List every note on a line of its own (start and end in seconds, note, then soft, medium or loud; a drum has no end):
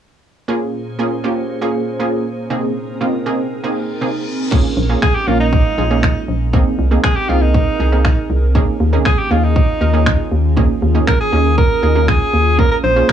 0.48 2.48 A#2 medium
0.48 0.72 A#3 medium
0.48 2.48 A#3 medium
0.48 0.72 C#4 medium
0.48 2.48 C#4 medium
0.48 0.73 F4 medium
0.48 4.48 G#4 medium
0.48 0.73 G#4 medium
0.48 2.48 C5 medium
0.99 1.11 A#3 medium
0.99 1.11 C#4 medium
0.99 1.11 F4 medium
0.99 1.11 G#4 medium
1.24 1.42 A#3 medium
1.24 1.42 C#4 medium
1.24 1.42 F4 medium
1.24 1.42 G4 medium
1.61 1.80 A#3 medium
1.61 1.80 C#4 medium
1.61 1.80 F4 medium
1.61 1.80 G#4 loud
2.00 2.24 A#3 medium
2.00 2.24 C#4 medium
2.00 2.24 F4 medium
2.00 2.24 G#4 medium
2.50 2.74 C3 medium
2.50 4.50 C3 medium
2.50 2.74 A#3 medium
2.50 2.74 C4 medium
2.50 4.50 C4 medium
2.50 4.50 D#4 medium
2.50 2.74 D#4 medium
2.50 2.74 G#4 medium
2.50 4.50 A#4 medium
3.01 3.13 C3 medium
3.01 3.13 A#3 medium
3.01 3.13 C4 medium
3.01 3.13 D#4 medium
3.01 3.13 F4 medium
3.26 3.44 C3 medium
3.26 3.44 A#3 medium
3.26 3.44 C4 medium
3.26 3.44 D#4 medium
3.26 3.44 G#4 loud
3.51 reverse cymbal medium
3.64 3.82 C3 medium
3.64 3.82 A#3 medium
3.64 3.82 C4 medium
3.64 3.82 D#4 medium
3.64 3.82 G#4 medium
4.01 4.25 C3 medium
4.01 4.25 A#3 medium
4.01 4.25 C4 medium
4.01 4.26 D#4 medium
4.01 4.26 G#4 medium
4.51 6.52 G#3 medium
4.51 4.70 A#3 medium
4.51 6.52 A#3 medium
4.51 4.70 C#4 medium
4.51 6.52 C#4 medium
4.51 4.70 F4 medium
4.51 4.70 G#4 loud
4.51 kick loud
4.51 crash medium
4.77 4.95 A#1 loud
4.89 5.08 A#3 medium
4.89 5.08 C#4 medium
4.89 5.08 F4 medium
4.89 5.08 G#4 medium
5.02 5.17 G#4 loud
5.02 finger snap loud
5.02 kick loud
5.15 5.29 G4 loud
5.27 5.64 A#1 medium
5.27 5.52 A#3 medium
5.27 5.52 C#4 medium
5.27 5.40 F4 medium
5.27 5.52 F4 medium
5.27 5.52 A#4 medium
5.40 6.24 D#4 medium
5.53 kick loud
5.78 6.15 A#1 medium
5.78 5.84 F4 medium
5.78 5.84 G#4 medium
5.90 6.21 A#3 medium
5.90 6.21 C#4 medium
5.90 6.21 F4 medium
5.90 6.21 G#4 medium
6.03 finger snap loud
6.03 kick loud
6.28 6.65 A#1 medium
6.53 8.53 C3 medium
6.53 6.72 A#3 medium
6.53 6.72 C4 medium
6.53 8.53 C4 medium
6.53 8.53 D#4 medium
6.53 6.72 D#4 medium
6.53 12.55 G#4 medium
6.53 6.72 G#4 loud
6.53 8.53 A#4 medium
6.53 kick loud
6.79 6.97 C2 loud
6.91 7.09 A#3 medium
6.91 7.09 C4 medium
6.91 7.09 D#4 medium
6.91 7.10 G#4 medium
7.04 7.18 G#4 loud
7.04 finger snap loud
7.04 kick loud
7.16 7.30 G4 loud
7.29 7.66 C2 medium
7.29 7.53 A#3 medium
7.29 7.53 C4 medium
7.29 7.53 D#4 medium
7.29 7.43 F4 medium
7.29 7.53 G#4 medium
7.42 8.30 D#4 medium
7.54 kick loud
7.79 8.16 C2 medium
7.79 7.86 D#4 medium
7.79 7.86 G#4 medium
7.92 8.22 A#3 medium
7.92 8.22 C4 medium
7.92 8.22 D#4 medium
7.92 8.22 G#4 medium
8.05 finger snap loud
8.05 kick loud
8.30 8.67 C2 medium
8.55 12.55 D#3 medium
8.55 8.73 A#3 medium
8.55 13.12 A#3 medium
8.55 8.73 C#4 medium
8.55 13.12 C#4 medium
8.55 8.73 D#4 medium
8.55 12.55 F4 medium
8.55 8.73 G#4 loud
8.55 kick loud
8.80 8.99 D#2 loud
8.93 9.11 A#3 medium
8.93 9.11 C#4 medium
8.93 9.11 D#4 medium
8.93 9.11 G#4 medium
9.05 9.20 G#4 loud
9.05 finger snap loud
9.05 kick loud
9.19 9.33 G4 loud
9.31 9.67 D#2 medium
9.31 9.55 A#3 medium
9.31 9.55 C#4 medium
9.31 9.55 D#4 medium
9.31 9.46 F4 medium
9.31 9.55 G#4 medium
9.44 10.32 D#4 medium
9.56 kick loud
9.81 10.18 D#2 medium
9.81 9.87 D#4 medium
9.81 9.87 A#4 medium
9.93 10.24 A#3 medium
9.93 10.24 C#4 medium
9.93 10.24 D#4 medium
9.93 10.24 G#4 medium
10.06 finger snap loud
10.06 kick loud
10.31 10.68 D#2 medium
10.56 10.75 A#3 medium
10.56 10.75 C#4 medium
10.56 10.75 D#4 medium
10.56 10.75 G#4 loud
10.56 kick loud
10.82 11.00 D#2 loud
10.94 11.13 A#3 medium
10.94 11.13 C#4 medium
10.94 11.13 D#4 medium
10.94 11.13 G#4 medium
11.07 11.19 A#4 medium
11.07 finger snap loud
11.07 kick loud
11.20 11.55 G#4 loud
11.32 11.69 D#2 medium
11.32 11.56 A#3 medium
11.32 11.57 C#4 medium
11.32 11.57 D#4 medium
11.32 11.57 G#4 medium
11.58 12.10 A#4 medium
11.58 kick loud
11.83 12.19 D#2 medium
11.83 11.89 D#4 medium
11.83 11.89 G#4 medium
11.95 12.26 A#3 medium
11.95 12.26 C#4 medium
11.95 12.26 D#4 medium
11.95 12.26 G#4 medium
12.08 12.60 G#4 medium
12.08 finger snap loud
12.08 kick loud
12.33 12.70 D#2 medium
12.58 13.12 G#3 medium
12.58 12.76 A#3 medium
12.58 12.77 C#4 medium
12.58 12.77 F4 medium
12.58 12.77 G#4 medium
12.58 12.71 A#4 loud
12.58 kick loud
12.71 12.77 A#4 medium
12.84 13.02 A#1 loud
12.84 13.10 C5 loud
12.96 13.12 A#3 medium
12.96 13.12 C#4 medium
12.96 13.12 F4 medium
12.96 13.12 G#4 medium
13.09 13.12 A#4 loud
13.09 finger snap loud